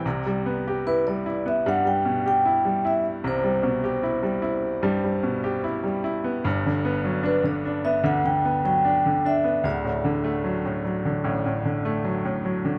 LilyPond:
<<
  \new Staff \with { instrumentName = "Vibraphone" } { \time 4/4 \key c \lydian \tempo 4 = 75 r4 b'16 d''8 e''16 fis''16 g''8 g''8. e''8 | c''2. r4 | r4 b'16 d''8 e''16 fis''16 g''8 g''8. e''8 | d''2. r4 | }
  \new Staff \with { instrumentName = "Grand piano" } { \clef bass \time 4/4 \key c \lydian <c, c>16 g16 b16 g'16 e'16 g16 e'16 b16 <g, g>16 g16 b,16 g'16 e'16 g16 e'8 | <c, c>16 g16 b,16 g'16 e'16 g16 e'8 <g, g>16 g16 b,16 g'16 e'16 g16 e'16 b16 | <g,, g,>16 d16 b16 fis16 d'16 d16 d'16 b16 <d, d>16 d16 b16 fis16 d'16 d16 d'16 b16 | <d,, d,>16 a,16 d16 a16 fis16 a,16 fis16 d16 <a,, a,>16 a,16 d16 a16 fis16 a,16 fis16 d16 | }
>>